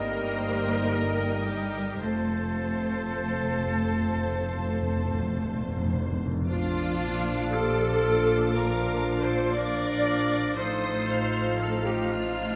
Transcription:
Already playing: double bass section G1, bassoon G3, french horn section G3 D#4, cello section A#3, viola section A#4 D#5, violin section A#4 G5, flute A#4, oboe A#4, clarinet D#5
0.39 viola section C5
0.92 viola section A#4, violin section G5
1.45 cello section G3, violin section G4, flute G4, viola section A#4
2.01 double bass section F1, timpani F2, bassoon F3, french horn section F3 C4, cello section A3, flute A4, violin section A4 A5, viola section C5, clarinet C5, oboe C5
2.18 timpani F2
2.26 timpani F2
2.34 timpani F2
2.42 timpani F2
2.59 timpani F2
2.67 timpani F2
2.76 timpani F2
2.85 timpani F2
2.93 timpani F2
3.01 timpani F2
3.09 timpani F2
3.17 timpani F2
3.25 timpani F2
3.33 timpani F2
3.41 timpani F2
3.49 timpani F2
3.58 timpani F2
3.66 timpani F2
3.74 timpani F2
3.83 timpani F2
3.91 timpani F2
3.99 timpani F2
4.08 timpani F2
4.15 timpani F2
4.23 timpani F2
4.31 timpani F2
4.39 timpani F2
4.47 timpani F2
4.56 timpani F2
4.64 timpani F2
4.73 timpani F2
4.80 timpani F2
4.88 timpani F2
4.96 timpani F2
5.04 timpani F2
5.12 timpani F2
5.19 timpani F2
5.27 timpani F2
5.36 timpani F2
5.45 timpani F2
5.53 timpani F2
5.60 timpani F2
5.69 timpani F2
5.77 timpani F2
5.85 timpani F2
5.93 timpani F2
6.01 timpani F2
6.10 timpani F2
6.17 timpani F2
6.25 timpani F2
6.33 timpani F2
6.42 timpani F2
6.47 double bass section A#1, cello section A#2, bassoon F3, trombone section F3 D4, clarinet D4, oboe D4, french horn section D4, viola section F4, violin section F4 D6, flute F5
7.52 oboe F4, french horn section G4, viola section A4, violin section A4
8.06 french horn section F4
8.54 trombone section F3 D4, bassoon F3, clarinet D4, oboe F4, viola section A#4, violin section A#4, flute F5
9.22 oboe A4, viola section C5, violin section C5
9.55 trombone section F3, bassoon F3, clarinet D4, french horn section D4, oboe A#4, viola section D5, violin section D5, flute F5
10.55 double bass section A1, cello section A2, trombone section F3 D#4, bassoon F3, clarinet D#4, french horn section D#4, oboe A4, viola section C5, violin section C5 D#6, flute F5
11.08 french horn section F4, violin section F6
11.60 oboe F4, viola section A4, violin section A4
11.85 oboe D#4, viola section G4, violin section G4
12.09 oboe D4, viola section F4, violin section F4

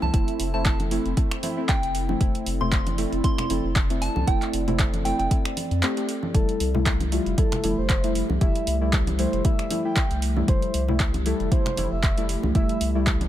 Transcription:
Already playing: synth stab A3 C4 E4, ambient pad C4 E4 A4 E5
0.02 analog synth bass C2, synth bell A5, high conga
0.13 analog synth bass F1, synth stab A3 C4 E4, kick, closed hi-hat
0.28 closed hi-hat
0.40 analog synth bass F1, open hi-hat
0.54 synth stab A3 C4 E4, synth bell A5
0.65 synth bell A5, kick, clap, closed hi-hat
0.80 closed hi-hat, high conga
0.91 synth stab A3 C4 E4, open hi-hat
1.06 analog synth bass F1, closed hi-hat
1.17 synth stab A3 C4 E4, kick, closed hi-hat
1.31 finger snap, closed hi-hat
1.43 synth stab A3 C4 E4, open hi-hat, high conga
1.57 synth stab A3 C4 E4
1.69 synth bell G5, kick, clap, closed hi-hat
1.83 analog synth bass F1, closed hi-hat
1.95 open hi-hat
2.09 synth stab A3 C4 E4, high conga
2.20 analog synth bass F1, synth stab A3 C4 E4, ambient pad D5, kick, closed hi-hat
2.35 closed hi-hat
2.46 analog synth bass F1, open hi-hat
2.61 synth stab A3 C4 E4, synth bell C6, low conga
2.72 kick, clap, closed hi-hat
2.87 closed hi-hat, high conga
2.98 synth stab A3 C4 E4, open hi-hat
3.12 analog synth bass F1, closed hi-hat
3.24 synth stab A3 C4 E4, synth bell C6, kick, closed hi-hat
3.38 synth bell C6, finger snap, closed hi-hat, low conga
3.50 analog synth bass F1, synth stab A3 C4 E4, open hi-hat, high conga
3.64 analog synth bass F1
3.76 kick, clap, closed hi-hat
3.90 synth stab A3 C4 E4, closed hi-hat
4.02 synth bell A5, open hi-hat
4.16 analog synth bass C2, high conga
4.27 analog synth bass F1, synth stab A3 C4 E4, synth bell G5, kick, closed hi-hat
4.42 clap, closed hi-hat
4.53 analog synth bass F1, open hi-hat
4.68 synth stab A3 C4 E4, closed hi-hat, low conga
4.79 kick, clap, closed hi-hat
4.94 closed hi-hat, high conga
5.05 synth stab A3 C4 E4, synth bell G5, open hi-hat
5.19 analog synth bass F1, synth bell G5, closed hi-hat
5.31 synth stab A3 C4 E4, kick, closed hi-hat
5.45 finger snap, closed hi-hat
5.57 open hi-hat, high conga
5.71 analog synth bass F2, closed hi-hat
5.83 synth stab A3 C4 G4, clap, closed hi-hat
5.97 synth stab A3 C4 G4, closed hi-hat
6.09 open hi-hat
6.23 high conga
6.34 analog synth bass F1, ambient pad F3 A3 G4 E5, synth stab G3 A3 E4, soft synth lead A4, kick, closed hi-hat
6.49 closed hi-hat
6.60 analog synth bass C2, open hi-hat
6.75 synth stab G3 A3 E4, low conga
6.86 kick, clap, closed hi-hat
7.00 closed hi-hat, high conga
7.12 synth stab G3 A3 E4, soft synth lead F4, open hi-hat
7.26 analog synth bass F1, closed hi-hat
7.38 synth stab G3 A3 E4, soft synth lead A4, kick, closed hi-hat
7.52 finger snap, closed hi-hat, low conga
7.64 analog synth bass F1, synth stab G3 A3 E4, open hi-hat, high conga
7.78 analog synth bass F1, soft synth lead C5
7.90 kick, clap, closed hi-hat
8.04 synth stab G3 A3 E4, closed hi-hat
8.15 open hi-hat
8.30 analog synth bass C2, high conga
8.41 analog synth bass F1, synth stab G3 A3 E4, soft synth lead E5, kick, closed hi-hat
8.55 closed hi-hat
8.67 analog synth bass C2, open hi-hat
8.81 synth stab G3 A3 E4
8.93 kick, clap, closed hi-hat
9.07 closed hi-hat, high conga
9.19 synth stab G3 A3 E4, soft synth lead C5, open hi-hat
9.33 analog synth bass F1, closed hi-hat
9.45 synth stab G3 A3 E4, soft synth lead E5, kick, closed hi-hat
9.59 finger snap, closed hi-hat
9.71 synth stab G3 A3 E4, open hi-hat, high conga
9.85 synth stab G3 A3 E4, soft synth lead G5
9.96 kick, clap, closed hi-hat
10.11 analog synth bass C2, closed hi-hat
10.22 open hi-hat
10.37 synth stab G3 A3 E4, high conga
10.48 analog synth bass F1, synth stab G3 A3 E4, soft synth lead C5, kick, closed hi-hat
10.62 closed hi-hat
10.74 analog synth bass C2, open hi-hat
10.88 synth stab G3 A3 E4, low conga
11.00 kick, clap, closed hi-hat
11.14 closed hi-hat, high conga
11.26 synth stab G3 A3 E4, soft synth lead A4, open hi-hat
11.40 analog synth bass F1, closed hi-hat
11.52 synth stab G3 A3 E4, soft synth lead C5, kick, closed hi-hat
11.66 finger snap, closed hi-hat, low conga
11.77 analog synth bass F1, synth stab G3 A3 E4, open hi-hat, high conga
11.92 analog synth bass F1, soft synth lead E5
12.03 kick, clap, closed hi-hat
12.17 synth stab G3 A3 E4, closed hi-hat
12.29 open hi-hat
12.43 analog synth bass C2, high conga
12.55 analog synth bass F1, synth stab G3 A3 E4, soft synth lead E5, kick, closed hi-hat
12.69 closed hi-hat
12.81 analog synth bass C2, open hi-hat
12.95 synth stab G3 A3 E4
13.07 kick, clap, closed hi-hat
13.21 closed hi-hat, high conga

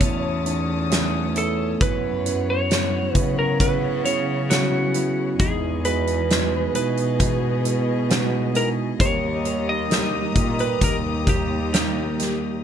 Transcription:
Already playing: cello section E2, tine electric piano A2 F#4, lead electric guitar C#5, string section C#5 A5
0.00 tine electric piano A3 B3 C#4 E4, steel-string acoustic guitar A3 C#4 E4 B4, string section D#6, kick, closed hi-hat
0.45 tine electric piano A3 B3 C#4 D#4, closed hi-hat
0.90 tine electric piano A3 B3 C#4 E4, steel-string acoustic guitar A3 C#4 E4 B4, snare, closed hi-hat
1.35 tine electric piano A3 B3 C#4 E4, lead electric guitar A4, closed hi-hat
1.80 cello section F#2, tine electric piano F#3 B3 C#4 E4, steel-string acoustic guitar F#3 C#4 E4 B4, lead electric guitar B4, string section F#5, kick, closed hi-hat
2.25 tine electric piano F#3 B3 C#4 E4, steel-string acoustic guitar C#4 E4 B4, closed hi-hat
2.50 lead electric guitar C#5
2.69 tine electric piano F#3 B3 C#4 E4, steel-string acoustic guitar F#3 C#4 E4 B4, snare, closed hi-hat
3.15 cello section C#3, tine electric piano F#3 B3 C#4 E4, lead electric guitar B4, kick, closed hi-hat
3.39 lead electric guitar A#4
3.60 steel-string acoustic guitar F#3 C#4 E4 B4, tine electric piano F#3 B3 C#4 E4, lead electric guitar B4, kick, closed hi-hat
4.04 tine electric piano F#3 B3 C#4 E4, lead electric guitar C#5, closed hi-hat
4.49 steel-string acoustic guitar F#3 C#4 E4 B4, tine electric piano F#3 B3 C#4 E4, lead electric guitar F#4, snare, closed hi-hat
4.93 tine electric piano F#3 B3 C#4 E4, steel-string acoustic guitar C#4 E4 B4, closed hi-hat
5.39 cello section E2, steel-string acoustic guitar E3 G#3 B3 D#4 G#4, tine electric piano E3 G#3 B3 D#4 E4, lead electric guitar G#4, string section G#4 D#5, kick, closed hi-hat
5.84 tine electric piano G#3 B3 D#4 F#4, steel-string acoustic guitar B3 D#4 G#4, lead electric guitar B4, closed hi-hat
6.07 closed hi-hat
6.29 steel-string acoustic guitar G#3 B3 D#4 G#4, tine electric piano G#3 B3 D#4 F#4, snare, closed hi-hat
6.74 cello section B2, tine electric piano G#3 B3 D#4 E4, lead electric guitar B4, closed hi-hat
6.97 closed hi-hat
7.19 steel-string acoustic guitar E3 G#3 B3 D#4 G#4, tine electric piano G#3 B3 D#4 F#4, kick, closed hi-hat
7.63 tine electric piano G#3 B3 D#4 E4, closed hi-hat
8.09 tine electric piano G#3 B3 D#4 F#4, steel-string acoustic guitar G#3 B3 D#4 G#4, snare, closed hi-hat
8.53 tine electric piano G#3 B3 D#4 E4, steel-string acoustic guitar B3 D#4 G#4, lead electric guitar A#4, closed hi-hat
8.99 cello section D#2, tine electric piano D#3 G3 A#3 D#4 G4, steel-string acoustic guitar D#3 A#3 D#4 G4 A#4, string section G4 A#5 D#6, lead electric guitar C#5, kick, closed hi-hat
9.44 tine electric piano G3 A#3 D#4 A#4, steel-string acoustic guitar G4 A#4, closed hi-hat
9.48 steel-string acoustic guitar D#4
9.69 lead electric guitar D#5
9.89 tine electric piano G3 A#3 D#4 A#4, steel-string acoustic guitar A#3 D#4 G4, snare, closed hi-hat
9.93 steel-string acoustic guitar A#4
10.34 cello section A#2, tine electric piano G3 A#3 D#4 A#4, kick, closed hi-hat
10.59 lead electric guitar B4, closed hi-hat
10.80 cello section D#2, steel-string acoustic guitar D#3 A#3 D#4 G4 A#4, tine electric piano G3 A#3 D#4 A#4, lead electric guitar A#4, kick, closed hi-hat
11.25 tine electric piano G3 A#3 D#4 G4, kick, closed hi-hat
11.29 lead electric guitar G4
11.72 tine electric piano G3 A#3 D#4 G4, steel-string acoustic guitar A#3 D#4 G4 A#4, lead electric guitar G4, snare, closed hi-hat
12.18 tine electric piano G3 A#3 D#4 G4, snare, closed hi-hat

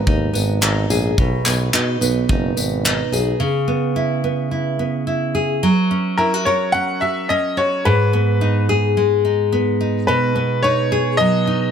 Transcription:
Already playing: nylon-string guitar G#2 B3
0.07 tuba D#2, nylon-string guitar D#4, kick
0.34 tuba G#1, nylon-string guitar B3, tambourine
0.61 tuba G#1, nylon-string guitar D#4, clap
0.90 tuba A#1, nylon-string guitar G#4, tambourine
1.18 tuba B1, nylon-string guitar B2, kick
1.46 tuba B1, nylon-string guitar B3, clap, tambourine
1.74 tuba B2, nylon-string guitar D#4, clap
2.01 tuba B1, nylon-string guitar B3, tambourine
2.29 tuba F#1, nylon-string guitar D#4, kick
2.57 tuba G#1, nylon-string guitar B3, tambourine
2.85 nylon-string guitar D#4, clap
3.12 tuba B1, nylon-string guitar G#4, tambourine
3.40 nylon-string guitar C#3
3.68 nylon-string guitar B3
3.96 nylon-string guitar E4
4.24 nylon-string guitar B3
4.51 nylon-string guitar E4
4.79 nylon-string guitar B3
5.07 nylon-string guitar E4
5.35 nylon-string guitar G#4
5.63 nylon-string guitar F#3
5.91 nylon-string guitar C#4
6.18 nylon-string guitar E4, upright piano A#4
6.34 nylon-string guitar F#4
6.45 nylon-string guitar A#4, upright piano C#5
6.72 nylon-string guitar C#4, upright piano F#5
7.01 nylon-string guitar F#4, upright piano E5
7.29 nylon-string guitar C#4, upright piano D#5
7.57 nylon-string guitar F#4, upright piano C#5
7.85 nylon-string guitar G#2, upright piano B4
8.13 nylon-string guitar B3
8.41 nylon-string guitar D#4
8.69 nylon-string guitar G#4
8.97 nylon-string guitar G#3
9.25 nylon-string guitar D#4
9.52 nylon-string guitar B3
9.81 nylon-string guitar D#4
10.07 nylon-string guitar B2, upright piano B4
10.36 nylon-string guitar B3
10.63 nylon-string guitar D#4, upright piano C#5
10.92 nylon-string guitar G#4
11.17 nylon-string guitar F#3, upright piano D#5
11.47 nylon-string guitar D#4

